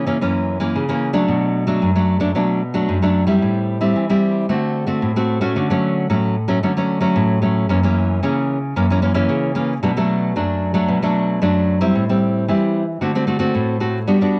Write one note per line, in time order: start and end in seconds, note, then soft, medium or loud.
0.00 0.19 C#3 medium
0.06 0.16 E3 medium
0.06 0.16 A#3 medium
0.06 0.17 C#4 medium
0.21 0.72 F#2 medium
0.21 0.57 E3 soft
0.21 0.57 A#3 medium
0.21 0.58 C#4 medium
0.60 0.83 E3 medium
0.60 0.83 A#3 medium
0.60 0.84 C#4 medium
0.75 1.26 C#3 medium
0.89 1.11 E3 medium
0.89 1.11 A#3 medium
0.89 1.11 C#4 medium
1.13 1.63 F#3 medium
1.13 1.63 A3 medium
1.13 1.64 D4 medium
1.28 1.79 B2 medium
1.67 1.90 F#3 medium
1.67 1.90 A3 medium
1.67 1.90 D4 medium
1.82 2.33 F#2 medium
1.95 2.18 F#3 medium
1.95 2.18 A3 medium
1.95 2.18 D4 medium
2.20 2.30 F#3 medium
2.20 2.30 A3 medium
2.20 2.30 D4 medium
2.35 2.86 B2 medium
2.35 2.60 F#3 medium
2.35 2.60 A3 soft
2.35 2.61 D4 medium
2.74 2.97 F#3 medium
2.74 2.97 A3 medium
2.74 2.98 D4 medium
2.89 3.40 F#2 medium
3.02 3.25 F#3 medium
3.02 3.25 A3 medium
3.02 3.25 D4 medium
3.27 3.77 G3 medium
3.27 3.77 C4 medium
3.27 3.77 E4 medium
3.42 3.93 A2 medium
3.81 4.04 G3 medium
3.81 4.04 C4 medium
3.81 4.04 E4 medium
3.96 4.47 E3 medium
4.10 4.45 G3 medium
4.10 4.45 C4 medium
4.10 4.46 E4 medium
4.49 5.00 D3 medium
4.49 4.85 A3 soft
4.49 4.85 C4 soft
4.49 4.85 F#4 soft
4.87 5.10 A3 medium
4.87 5.11 C4 medium
4.87 5.11 F#4 medium
5.02 5.53 A2 medium
5.16 5.39 A3 medium
5.16 5.39 C4 medium
5.16 5.39 F#4 medium
5.41 5.69 A3 medium
5.41 5.70 C#4 medium
5.41 5.71 F#4 medium
5.56 6.07 D3 medium
5.70 6.06 F#3 medium
5.70 6.06 A3 medium
5.70 6.06 C#4 medium
6.10 6.60 A2 medium
6.10 6.35 F#3 medium
6.10 6.35 A3 soft
6.10 6.35 C#4 medium
6.48 6.58 F#3 medium
6.48 6.58 A3 medium
6.48 6.58 C#4 medium
6.63 7.14 D3 medium
6.63 6.71 F#3 medium
6.63 6.71 A3 medium
6.63 6.71 C#4 medium
6.77 6.99 F#3 medium
6.77 6.99 A3 medium
6.77 6.99 C#4 medium
7.01 7.37 F#3 medium
7.01 7.38 A3 medium
7.01 7.38 C#4 medium
7.16 7.67 A2 medium
7.42 7.67 F#3 soft
7.42 7.67 A3 medium
7.42 7.67 C#4 medium
7.69 8.20 F#2 medium
7.69 7.78 E3 soft
7.69 7.79 A#3 medium
7.69 7.79 C#4 medium
7.83 8.19 E3 medium
7.83 8.19 A#3 medium
7.83 8.19 C#4 medium
8.23 8.73 C#3 medium
8.23 8.57 E3 soft
8.23 8.57 A#3 medium
8.23 8.57 C#4 medium
8.76 9.27 F#2 medium
8.76 8.85 E3 medium
8.76 8.85 A#3 medium
8.76 8.86 C#4 medium
8.90 8.99 E3 medium
8.90 8.99 A#3 medium
8.90 8.99 C#4 medium
9.02 9.11 E3 medium
9.02 9.12 A#3 medium
9.02 9.12 C#4 medium
9.15 9.51 E3 medium
9.15 9.51 A#3 medium
9.15 9.51 C#4 medium
9.29 9.80 C#3 medium
9.55 9.73 E3 medium
9.55 9.73 A#3 medium
9.55 9.73 C#4 medium
9.83 10.33 B2 medium
9.83 9.91 F#3 soft
9.83 9.91 A3 medium
9.83 9.91 D4 medium
9.97 10.32 F#3 medium
9.97 10.32 A3 medium
9.97 10.32 D4 medium
10.36 10.86 F#2 medium
10.36 10.71 F#3 soft
10.36 10.72 A3 soft
10.36 10.72 D4 medium
10.74 10.97 F#3 medium
10.74 10.97 A3 medium
10.74 10.97 D4 medium
10.88 11.39 B2 medium
11.03 11.38 F#3 medium
11.03 11.38 A3 medium
11.03 11.38 D4 medium
11.42 11.92 F#2 medium
11.42 11.77 F#3 medium
11.42 11.78 A3 medium
11.42 11.78 D4 medium
11.81 12.04 G3 medium
11.81 12.04 C4 medium
11.81 12.04 E4 medium
11.95 12.46 A2 medium
12.09 12.45 G3 medium
12.09 12.45 C4 medium
12.09 12.45 E4 medium
12.48 12.99 E3 medium
12.48 12.83 G3 soft
12.48 12.83 C4 soft
12.48 12.83 E4 medium
13.01 13.52 D3 medium
13.01 13.10 A3 medium
13.01 13.11 C4 medium
13.01 13.11 F#4 medium
13.15 13.24 A3 medium
13.15 13.24 C4 medium
13.15 13.25 F#4 medium
13.27 13.37 A3 medium
13.27 13.37 C4 medium
13.27 13.37 F#4 medium
13.39 13.76 A3 medium
13.39 13.76 C4 medium
13.39 13.76 F#4 medium
13.55 14.05 A2 medium
13.80 13.98 A3 soft
13.80 13.98 C4 soft
13.80 13.98 F#4 medium
14.08 14.40 G3 medium
14.08 14.17 B3 medium
14.08 14.17 D4 medium
14.08 14.17 F#4 medium
14.21 14.40 B3 medium
14.21 14.40 D4 medium
14.21 14.40 F#4 medium